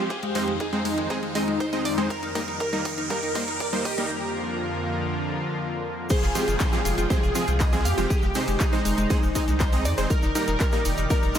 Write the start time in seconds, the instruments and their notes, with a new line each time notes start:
Already playing: analog synth pad C4 C5, supersaw synth G4, synth texture F5 F6, riser
0.10 analog synth pad F2 D#3 G#3 D#4, synth arpeggio sound G#4, kick, closed hi-hat
0.23 synth arpeggio sound G#3, closed hi-hat
0.35 supersaw synth G#3 C4 D#4 C5, synth arpeggio sound G#3, open hi-hat
0.48 synth arpeggio sound G#3, closed hi-hat
0.60 supersaw synth D#4, synth arpeggio sound G#4, kick, closed hi-hat
0.73 supersaw synth G#3 C4 D#4 C5, synth arpeggio sound G#3, closed hi-hat
0.85 synth arpeggio sound G#3, open hi-hat
0.98 synth arpeggio sound G#3, closed hi-hat
1.10 supersaw synth G#3 C4 D#4 C5, synth arpeggio sound G#4, kick, closed hi-hat
1.23 synth arpeggio sound G#3, closed hi-hat
1.35 supersaw synth G#3 C4 D#4 D#5, synth arpeggio sound G#3, open hi-hat
1.48 synth arpeggio sound G#3, closed hi-hat
1.60 synth arpeggio sound C5, kick, closed hi-hat
1.73 supersaw synth G#3 C4 D#4 D#5, synth arpeggio sound G#3, closed hi-hat
1.85 synth arpeggio sound D5, open hi-hat
1.98 supersaw synth G#3 C4 D#4 C5, synth arpeggio sound G#3, closed hi-hat
2.10 analog synth pad G3 A#3 G4 A#4, supersaw synth A#4, synth arpeggio sound A#4, kick, closed hi-hat
2.23 synth arpeggio sound D#4, closed hi-hat
2.35 supersaw synth G3 A#3 D#4 A#4, synth arpeggio sound D#4, kick, open hi-hat
2.48 synth arpeggio sound D#4, closed hi-hat
2.60 synth arpeggio sound A#4, kick, closed hi-hat
2.73 supersaw synth G3 A#3 D#4 A#4, synth arpeggio sound D#4, closed hi-hat
2.85 synth arpeggio sound D#4, kick, open hi-hat
2.98 synth arpeggio sound D#4, closed hi-hat
3.10 supersaw synth G3 A#3 D#4 A#4, synth arpeggio sound A#4, kick, closed hi-hat
3.23 synth arpeggio sound D#4, closed hi-hat
3.35 supersaw synth G3 A#3 D#4 C5, synth arpeggio sound D#4, kick, open hi-hat
3.48 synth arpeggio sound D#4, closed hi-hat
3.60 synth arpeggio sound D5, kick, closed hi-hat
3.73 supersaw synth G3 A#3 D#4 C5, synth arpeggio sound D#4, closed hi-hat
3.85 supersaw synth G4, synth arpeggio sound D#5, kick, open hi-hat
3.98 supersaw synth G3 A#3 D#4 A#4, synth arpeggio sound D#4, closed hi-hat
4.10 analog synth pad F2 D3 F3 F4
6.10 analog synth pad C3 F3 G#3 F4 G5, supersaw synth G#4, synth arpeggio sound C5, synth texture D5 D6, kick, closed hi-hat, crash, ride, tambourine, downlifter, shaker
6.22 analog synth bass F1, synth arpeggio sound F4, snare, shaker
6.35 supersaw synth F3 G#3 C4 G4, synth arpeggio sound F4, open hi-hat, tambourine, shaker
6.48 analog synth bass F1, synth arpeggio sound F4, snare, closed hi-hat, shaker
6.60 synth arpeggio sound C5, kick, snare, clap, closed hi-hat, ride, tambourine, shaker
6.72 supersaw synth F3 G#3 C4 G4, synth arpeggio sound F4, snare, shaker
6.85 analog synth bass F1, synth arpeggio sound F4, open hi-hat, tambourine, shaker
6.98 analog synth bass F1, synth arpeggio sound F4, closed hi-hat, shaker
7.10 supersaw synth F3 G#3 C4 G4 G#4, synth arpeggio sound C5, kick, closed hi-hat, ride, tambourine, shaker
7.23 analog synth bass F1, synth arpeggio sound F4, closed hi-hat, shaker
7.35 supersaw synth F3 G#3 C4 G#4, synth arpeggio sound F4, snare, open hi-hat, tambourine, shaker
7.48 analog synth bass C2, synth arpeggio sound F4, closed hi-hat, shaker
7.59 synth arpeggio sound D#5, kick, snare, clap, closed hi-hat, ride, tambourine, shaker
7.73 supersaw synth F3 G#3 C4 G#4, synth arpeggio sound F4, shaker
7.85 analog synth bass F2, supersaw synth G4, synth arpeggio sound F5, open hi-hat, tambourine, shaker
7.98 analog synth bass F1, supersaw synth F3 G#3 C4 G4, synth arpeggio sound F4, closed hi-hat, shaker
8.10 analog synth pad D#3 D#4 C5, synth arpeggio sound G#4, kick, closed hi-hat, ride, tambourine, shaker
8.22 analog synth bass F1, synth arpeggio sound G#3, snare, shaker
8.35 synth arpeggio sound G#3, supersaw synth G#3 C4 D#4 C5, snare, open hi-hat, shaker
8.48 analog synth bass F1, synth arpeggio sound G#3, closed hi-hat, shaker
8.60 supersaw synth D#4, synth arpeggio sound G#4, kick, snare, clap, closed hi-hat, ride, tambourine, shaker
8.73 supersaw synth G#3 C4 D#4 C5, synth arpeggio sound G#3, snare, shaker
8.85 analog synth bass F1, synth arpeggio sound G#3, open hi-hat, tambourine, shaker
8.98 analog synth bass F1, synth arpeggio sound G#3, closed hi-hat, shaker
9.10 supersaw synth G#3 C4 D#4 C5, synth arpeggio sound G#4, kick, closed hi-hat, ride, tambourine, shaker
9.23 analog synth bass F1, synth arpeggio sound G#3, shaker
9.35 supersaw synth G#3 C4 D#4 D#5, synth arpeggio sound G#3, kick, open hi-hat, tambourine, shaker
9.48 analog synth bass C2, synth arpeggio sound G#3, snare, closed hi-hat, shaker
9.60 synth arpeggio sound C5, kick, snare, clap, closed hi-hat, ride, tambourine, shaker
9.72 synth arpeggio sound G#3, supersaw synth G#3 C4 D#4 D#5, closed hi-hat, shaker
9.85 analog synth bass F2, synth arpeggio sound D5, open hi-hat, tambourine, shaker
9.98 analog synth bass F1, supersaw synth G#3 C4 D#4 C5, synth arpeggio sound G#3, closed hi-hat, shaker
10.10 analog synth pad A#2 D#3 G3 G4, synth arpeggio sound A#4, supersaw synth A#4, kick, closed hi-hat, ride, tambourine, shaker
10.22 analog synth bass F1, synth arpeggio sound D#4, snare, shaker
10.35 supersaw synth G3 A#3 D#4 A#4, synth arpeggio sound D#4, open hi-hat, tambourine, shaker
10.47 analog synth bass F1, synth arpeggio sound D#4, snare, closed hi-hat, shaker
10.60 synth arpeggio sound A#4, kick, snare, clap, closed hi-hat, ride, tambourine, shaker
10.72 supersaw synth G3 A#3 D#4 A#4, synth arpeggio sound D#4, snare, shaker
10.85 analog synth bass F1, synth arpeggio sound D#4, open hi-hat, tambourine, shaker
10.98 analog synth bass F1, synth arpeggio sound D#4, closed hi-hat, shaker
11.10 supersaw synth G3 A#3 D#4 A#4, synth arpeggio sound A#4, kick, closed hi-hat, ride, tambourine, shaker
11.23 analog synth bass F1, synth arpeggio sound D#4, closed hi-hat, shaker
11.34 supersaw synth G3 A#3 D#4 C5, synth arpeggio sound D#4, snare, open hi-hat, tambourine, shaker